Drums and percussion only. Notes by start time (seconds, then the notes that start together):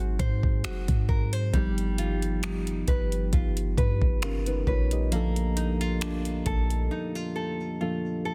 0.19 kick, closed hi-hat
0.43 kick
0.64 finger snap, closed hi-hat
0.88 kick, closed hi-hat
1.09 kick
1.33 closed hi-hat
1.54 kick, closed hi-hat
1.78 closed hi-hat
1.98 closed hi-hat
2.22 closed hi-hat
2.43 finger snap, closed hi-hat
2.67 closed hi-hat
2.88 kick, closed hi-hat
3.12 closed hi-hat
3.33 kick, closed hi-hat
3.57 closed hi-hat
3.78 kick, closed hi-hat
4.02 kick
4.22 finger snap, closed hi-hat
4.46 closed hi-hat
4.67 kick
4.91 closed hi-hat
5.12 closed hi-hat
5.36 closed hi-hat
5.57 closed hi-hat
5.81 closed hi-hat
6.01 finger snap, closed hi-hat
6.25 closed hi-hat
6.46 kick, closed hi-hat
6.70 closed hi-hat